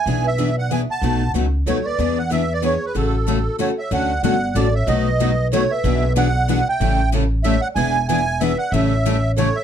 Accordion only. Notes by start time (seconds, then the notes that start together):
Already playing: G#5
0.27 E5
0.59 F#5
0.73 G#5
0.91 A5
1.67 C#5
1.86 D5
2.19 F#5
2.32 E5
2.53 D5
2.65 C#5
2.86 B4
2.98 A4
3.60 C#5
3.78 E5
3.93 F#5
4.23 F#5
4.55 D5
4.75 E5
4.88 D#5
5.53 C#5
5.71 E5
6.17 F#5
6.50 F#5
6.69 G5
7.43 E5
7.62 F#5
7.75 G#5
8.09 G#5
8.41 E5
8.58 F#5
8.71 E5
9.38 C#5
9.56 E5